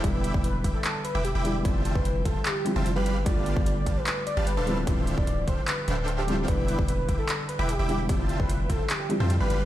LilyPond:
<<
  \new Staff \with { instrumentName = "Supersaw synth" } { \time 4/4 \key d \dorian \tempo 4 = 149 <e' e'' g'' b'' d'''>8. <e' e'' g'' b''>16 r8 <e' e'' g'' b'' d'''>16 r4 <e' e'' g'' b'' d'''>16 r16 <e' e'' g'' b'' d'''>8 r16 | <f' c'' e'' g'' a''>8. <f' c'' c'''>16 r8 <f' c'' e'' g'' a''>16 r4 <f' c'' e'' g'' a''>16 r16 <g g' b' f'' b''>8 r16 | <g g' b' f'' a''>8. <g g' b' f'' a''>16 r8 <g g' b' f'' a''>16 r4 <g g' b' f'' a''>16 r16 <d' a' c'' e'' f'' a''>8 r16 | <d' a' c'' e'' f'' g''>8. <d' a' c'' e'' f'' b''>16 r8 <d' a' c'' e'' f'' g''>16 r8. <d' a' c'' e'' f'' g''>4. |
<e' g'' b'' d'''>8. <e' e'' b''>16 r8 <e' e'' g'' b'' d'''>16 r4 <e' e'' g'' b'' d'''>16 r16 <e' e'' g'' b'' d'''>8 r16 | <f' c'' e'' g'' a''>8. <f' c'' e'' c'''>16 r8 <f' c'' e'' g'' a''>16 r4 <f' c'' e'' g'' a''>16 r16 <g g' b' f'' b''>8 r16 | }
  \new Staff \with { instrumentName = "Soft synth lead" } { \time 4/4 \key d \dorian b'8. r16 b'8 r16 a'8 r16 b'8 g'8 g'8 | r8. b'8 r16 a'8 g'8 r8. b'8 r16 | d''8. r16 d''8. b'8 r16 d''8 b'8 b'8 | r8. d''8 r16 c''8 b'8 r8. g'8 r16 |
b'8. r16 b'8 r16 a'8 r16 b'8 g'8 g'8 | r8. b'8. a'8 g'8 r8. b'8 r16 | }
  \new Staff \with { instrumentName = "Felt piano" } { \clef bass \time 4/4 \key d \dorian <d e g b e'>2.~ <d e g b e'>8 <d e g b e'>8 | <d f g c' e'>2~ <d f g c' e'>8 <d f g c' e'>4 r8 | <d g a b f'>2.~ <d g a b f'>8 <d f g c' e'>8 | <d f g c' e'>2~ <d f g c' e'>8 r4 <d f g c' e'>8 |
<d e g b e'>2.~ <d e g b e'>8 <d e g b e'>8 | <d f g c' e'>2~ <d f g c' e'>8 <d f g c' e'>4 r8 | }
  \new Staff \with { instrumentName = "808-style bass" } { \clef bass \time 4/4 \key d \dorian e,,8. e,,8. e,,16 r4 e,,8 e,,8. | f,,8. f,,8. f,,16 r4 f,,8 g,,8. | g,,8. g,,8. g,,16 r4 g,,8 d,,8. | d,,8. d,,8. d,,16 r8. d,,4. |
e,,8. e,,8. e,,16 r4 e,,8 e,,8. | f,,8. f,,8. f,,16 r4 f,8 g,,8. | }
  \new DrumStaff \with { instrumentName = "Drums" } \drummode { \time 4/4 <hh bd>8 hh16 bd16 hh8 <hh bd>8 <hc hh>8 hh8 hh8 hh8 | <hh bd>8 hh16 bd16 hh8 <hh bd>8 <hc hh>8 hh8 hh8 hh8 | <hh bd>8 hh16 bd16 hh8 <hh bd>8 <hc hh>8 hh8 hh8 hh8 | <hh bd>8 hh16 bd16 hh8 <hh bd>8 <hc hh>8 hh8 hh8 hh8 |
<hh bd>8 hh16 bd16 hh8 <hh bd>8 <hc hh>8 hh8 hh8 hh8 | <hh bd>8 hh16 bd16 hh8 <hh bd>8 <hc hh>8 hh8 hh8 hh8 | }
>>